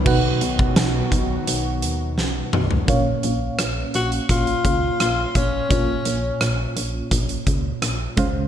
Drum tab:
CC |x---------------|----------------|----------------|
HH |--x-x-x-x-x-----|x-x-x-xxxxx-x-x-|x-x-x-x-xxx-x-x-|
SD |----o-------o---|----r-------r---|----r-------r---|
T2 |--------------o-|----------------|----------------|
FT |---------------o|----------------|----------------|
BD |o--o--o---------|o-------o-o---o-|o-------o-o---o-|